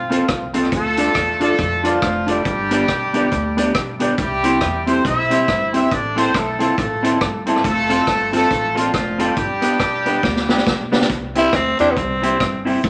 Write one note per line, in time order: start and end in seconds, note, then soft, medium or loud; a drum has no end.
0.00 0.22 B1 medium
0.00 0.50 F3 medium
0.00 0.51 C4 medium
0.00 0.50 F4 medium
0.10 0.24 C4 loud
0.10 0.25 C4 medium
0.10 0.24 F4 medium
0.10 0.25 F4 medium
0.10 0.24 A4 medium
0.10 0.25 A4 medium
0.10 0.24 C5 loud
0.10 closed hi-hat loud
0.28 0.66 C2 medium
0.28 kick loud
0.28 cross-stick loud
0.28 closed hi-hat medium
0.54 0.67 C4 medium
0.54 0.68 C4 medium
0.54 0.67 F4 medium
0.54 0.69 F4 medium
0.54 0.68 A4 medium
0.54 0.69 A4 medium
0.54 0.68 C5 loud
0.54 closed hi-hat medium
0.64 cross-stick medium
0.72 1.09 D2 loud
0.72 1.38 A3 loud
0.72 1.38 F4 medium
0.72 1.38 A4 loud
0.72 kick loud
0.72 closed hi-hat medium
0.97 1.10 D4 medium
0.97 1.12 D4 medium
0.97 1.11 F4 medium
0.97 1.12 F4 medium
0.97 1.11 A4 medium
0.97 1.12 A4 loud
0.97 1.11 D5 medium
0.97 closed hi-hat loud
1.15 1.52 E2 medium
1.15 1.20 A4 soft
1.15 1.20 D5 soft
1.15 kick loud
1.15 cross-stick loud
1.15 closed hi-hat medium
1.40 1.82 A3 medium
1.40 1.55 D4 medium
1.40 1.54 D4 medium
1.40 1.54 F4 medium
1.40 1.55 F4 medium
1.40 1.82 F4 medium
1.40 1.54 A4 medium
1.40 1.55 A4 medium
1.40 1.82 A4 loud
1.40 1.55 D5 loud
1.40 closed hi-hat medium
1.59 1.96 F2 medium
1.59 kick loud
1.59 closed hi-hat medium
1.83 2.29 F3 medium
1.83 1.97 D4 medium
1.83 1.98 D4 medium
1.83 2.29 D4 medium
1.83 1.97 F4 medium
1.83 1.98 F4 medium
1.83 2.29 F4 medium
1.83 1.98 A4 medium
1.83 1.99 A4 medium
1.83 1.98 D5 loud
1.83 closed hi-hat loud
2.02 2.39 F1 loud
2.02 kick loud
2.02 cross-stick loud
2.02 closed hi-hat medium
2.27 2.41 D4 medium
2.27 2.42 F4 medium
2.27 2.41 F4 medium
2.27 2.42 A4 medium
2.27 2.41 A4 medium
2.27 2.41 D5 medium
2.27 closed hi-hat medium
2.31 3.99 G3 medium
2.31 3.98 D4 medium
2.31 3.99 G4 loud
2.45 2.82 G1 loud
2.45 kick loud
2.45 closed hi-hat medium
2.71 2.85 B3 medium
2.71 2.84 D4 medium
2.71 2.85 D4 medium
2.71 2.84 G4 medium
2.71 2.85 G4 loud
2.71 2.84 B4 medium
2.71 2.85 D5 loud
2.71 closed hi-hat loud
2.88 3.25 B1 medium
2.88 kick loud
2.88 cross-stick loud
2.88 closed hi-hat medium
3.13 3.28 B3 medium
3.13 3.27 D4 medium
3.13 3.28 D4 medium
3.13 3.28 G4 medium
3.13 3.28 G4 loud
3.13 3.28 B4 medium
3.13 3.28 D5 loud
3.13 closed hi-hat medium
3.32 3.69 D2 loud
3.32 kick loud
3.32 closed hi-hat medium
3.57 3.71 B3 medium
3.57 3.70 D4 medium
3.57 3.72 D4 medium
3.57 3.70 G4 medium
3.57 3.72 G4 loud
3.57 3.70 B4 medium
3.57 3.71 D5 loud
3.57 closed hi-hat loud
3.75 4.12 B1 medium
3.75 kick loud
3.75 cross-stick loud
3.75 closed hi-hat medium
3.99 4.14 B3 medium
3.99 4.14 D4 medium
3.99 4.15 D4 medium
3.99 4.14 G4 medium
3.99 4.15 G4 loud
3.99 4.14 B4 medium
3.99 4.14 D5 medium
3.99 closed hi-hat medium
4.18 4.55 C2 loud
4.18 4.84 G3 medium
4.18 4.84 E4 medium
4.18 4.84 G4 loud
4.18 kick loud
4.18 closed hi-hat medium
4.43 4.57 C4 medium
4.43 4.58 C4 medium
4.43 4.57 E4 medium
4.43 4.58 E4 loud
4.43 4.57 G4 medium
4.43 4.59 G4 loud
4.43 4.57 C5 medium
4.43 closed hi-hat loud
4.61 4.99 E2 medium
4.61 4.67 G4 soft
4.61 4.67 C5 soft
4.61 kick loud
4.61 cross-stick loud
4.61 closed hi-hat medium
4.86 5.00 C4 medium
4.86 5.01 C4 medium
4.86 5.06 C4 medium
4.86 5.00 E4 medium
4.86 5.01 E4 medium
4.86 5.00 G4 medium
4.86 5.02 G4 medium
4.86 5.01 C5 loud
4.86 5.06 C5 medium
4.86 closed hi-hat medium
4.90 5.06 A4 medium
5.05 5.42 B1 loud
5.05 5.70 E4 medium
5.05 5.71 C5 medium
5.05 5.70 E5 loud
5.05 kick loud
5.05 closed hi-hat medium
5.29 5.43 C4 medium
5.29 5.44 C4 medium
5.29 5.43 E4 medium
5.29 5.45 E4 medium
5.29 5.44 G4 medium
5.29 5.45 G4 medium
5.29 5.44 C5 loud
5.29 closed hi-hat medium
5.48 5.85 G1 loud
5.48 kick loud
5.48 cross-stick loud
5.48 closed hi-hat medium
5.73 5.86 C4 medium
5.73 5.88 C4 medium
5.73 5.87 E4 medium
5.73 5.88 E4 medium
5.73 5.91 E4 medium
5.73 5.87 G4 medium
5.73 5.89 G4 medium
5.73 5.87 C5 medium
5.73 5.91 C5 medium
5.73 5.91 E5 medium
5.73 closed hi-hat medium
5.91 6.28 A1 medium
5.91 6.17 D4 medium
5.91 6.18 A4 medium
5.91 6.17 D5 loud
5.91 kick loud
5.91 closed hi-hat medium
6.15 6.29 C4 medium
6.15 6.31 C4 medium
6.15 6.34 C4 medium
6.15 6.30 E4 medium
6.15 6.31 E4 loud
6.15 6.30 A4 medium
6.15 6.31 A4 loud
6.15 6.34 A4 medium
6.15 6.30 C5 loud
6.15 6.34 C5 loud
6.15 closed hi-hat medium
6.34 6.71 B1 loud
6.34 6.61 A3 medium
6.34 6.61 E4 medium
6.34 6.40 A4 soft
6.34 6.61 A4 medium
6.34 6.40 C5 soft
6.34 kick loud
6.34 cross-stick loud
6.34 closed hi-hat medium
6.59 6.73 C4 medium
6.59 6.73 E4 medium
6.59 6.74 E4 medium
6.59 6.73 A4 medium
6.59 6.74 A4 medium
6.59 6.73 C5 loud
6.59 closed hi-hat medium
6.63 7.44 A3 medium
6.63 7.44 F4 medium
6.63 7.44 A4 medium
6.78 7.15 A1 medium
6.78 kick loud
6.78 closed hi-hat medium
7.03 7.17 C4 medium
7.03 7.16 C4 medium
7.03 7.16 E4 medium
7.03 7.17 E4 medium
7.03 7.17 A4 medium
7.03 7.18 A4 medium
7.03 7.17 C5 loud
7.03 closed hi-hat loud
7.21 7.58 G1 loud
7.21 kick loud
7.21 cross-stick loud
7.21 closed hi-hat medium
7.46 7.60 C4 medium
7.46 7.61 C4 medium
7.46 7.60 E4 medium
7.46 7.61 E4 medium
7.46 7.60 A4 medium
7.46 7.61 A4 medium
7.46 7.60 C5 loud
7.46 closed hi-hat medium
7.56 cross-stick medium
7.64 8.01 F1 loud
7.64 8.30 A3 loud
7.64 8.30 F4 medium
7.64 8.30 A4 loud
7.64 kick loud
7.64 closed hi-hat medium
7.89 8.03 C4 medium
7.89 8.04 C4 medium
7.89 8.03 F4 medium
7.89 8.04 F4 loud
7.89 8.03 A4 medium
7.89 8.04 A4 medium
7.89 8.03 C5 loud
7.89 closed hi-hat loud
8.07 8.44 G1 loud
8.07 8.12 A4 soft
8.07 8.13 C5 soft
8.07 kick loud
8.07 cross-stick loud
8.07 closed hi-hat medium
8.32 8.46 C4 medium
8.32 8.47 C4 medium
8.32 8.46 F4 medium
8.32 8.47 F4 medium
8.32 8.46 A4 medium
8.32 8.48 A4 medium
8.32 8.47 C5 loud
8.32 closed hi-hat medium
8.36 8.75 A3 medium
8.36 8.75 F4 medium
8.36 8.75 A4 loud
8.51 8.88 A1 medium
8.51 kick loud
8.51 closed hi-hat medium
8.75 8.89 C4 medium
8.75 8.90 C4 medium
8.75 9.20 D4 medium
8.75 8.90 F4 medium
8.75 8.89 F4 medium
8.75 8.89 A4 medium
8.75 8.90 A4 medium
8.75 8.89 C5 loud
8.75 closed hi-hat loud
8.79 9.21 F3 medium
8.79 9.21 F4 medium
8.94 9.31 F1 medium
8.94 kick loud
8.94 cross-stick loud
8.94 closed hi-hat medium
9.18 9.33 C4 medium
9.18 10.90 D4 medium
9.18 9.33 F4 medium
9.18 9.33 A4 loud
9.18 9.33 A4 medium
9.18 9.33 C5 loud
9.18 closed hi-hat medium
9.23 10.90 G3 medium
9.23 10.90 G4 loud
9.37 9.74 G1 loud
9.37 kick loud
9.37 closed hi-hat medium
9.61 9.76 B3 medium
9.61 9.75 B3 medium
9.61 9.76 D4 medium
9.61 9.77 D4 medium
9.61 9.76 G4 medium
9.61 9.77 G4 medium
9.61 9.76 B4 medium
9.61 closed hi-hat loud
9.80 10.17 B1 medium
9.80 9.86 G4 soft
9.80 9.85 B4 soft
9.80 kick loud
9.80 cross-stick loud
9.80 closed hi-hat medium
10.05 10.19 B3 medium
10.05 10.20 B3 medium
10.05 10.19 D4 medium
10.05 10.20 D4 medium
10.05 10.19 G4 medium
10.05 10.21 G4 medium
10.05 10.19 B4 loud
10.05 closed hi-hat medium
10.23 10.60 D2 loud
10.23 kick loud
10.23 snare medium
10.36 snare medium
10.49 10.63 B3 medium
10.49 10.62 B3 medium
10.49 10.63 D4 medium
10.49 10.63 G4 medium
10.49 10.64 G4 medium
10.49 10.63 B4 loud
10.49 snare medium
10.58 snare medium
10.67 11.04 B1 medium
10.67 kick loud
10.67 snare medium
10.92 11.06 B3 medium
10.92 11.05 B3 medium
10.92 11.06 D4 medium
10.92 11.06 G4 medium
10.92 11.07 G4 medium
10.92 11.06 B4 loud
10.92 snare medium
11.01 snare medium
11.10 11.47 C2 loud
11.10 kick loud
11.10 closed hi-hat medium
11.35 11.50 C4 medium
11.35 11.49 C4 medium
11.35 11.50 E4 medium
11.35 11.49 E4 medium
11.35 11.57 E4 loud
11.35 11.49 G4 medium
11.35 11.50 G4 medium
11.35 11.50 C5 medium
11.35 closed hi-hat loud
11.53 11.75 D2 medium
11.53 11.80 C4 medium
11.53 kick loud
11.53 cross-stick loud
11.53 closed hi-hat medium
11.79 11.94 E2 loud
11.79 11.92 C4 medium
11.79 11.93 C4 medium
11.79 11.93 D4 loud
11.79 11.92 E4 medium
11.79 11.94 E4 medium
11.79 11.93 G4 medium
11.79 11.94 G4 medium
11.79 11.93 C5 medium
11.79 closed hi-hat medium
11.92 11.99 B3 medium
11.97 12.34 C2 medium
11.97 12.66 C4 medium
11.97 kick loud
11.97 closed hi-hat medium
12.22 12.36 C4 medium
12.22 12.35 C4 loud
12.22 12.36 E4 medium
12.22 12.36 G4 medium
12.22 12.37 G4 medium
12.22 12.36 C5 loud
12.22 closed hi-hat medium
12.40 12.77 G1 loud
12.40 kick loud
12.40 cross-stick loud
12.40 closed hi-hat medium
12.65 12.79 C4 medium
12.65 12.79 C4 loud
12.65 12.79 E4 medium
12.65 12.80 G4 medium
12.65 12.80 C5 loud
12.65 open hi-hat soft
12.84 12.90 F1 loud
12.84 kick loud
12.84 closed hi-hat medium